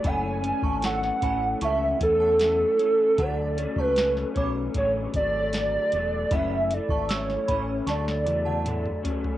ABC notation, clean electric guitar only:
X:1
M:4/4
L:1/8
Q:1/4=77
K:Dlyd
V:1 name="Clean electric guitar"
[F,,E,A,C] [E,A,C] [F,,E,A,C] [E,A,C] [F,,E,A,C] [E,A,C] [F,,E,A,C] [E,A,C] | [D,F,A,] [F,A,C] [F,A,C] [F,A,C] [D,F,A,C] [F,A,] [D,F,A,] [F,A,] | [F,,E,A,C] [E,A,] [F,,E,A,C] [E,A,C] [D,F,A,] [F,A,] [D,F,A,] [F,A,C] |]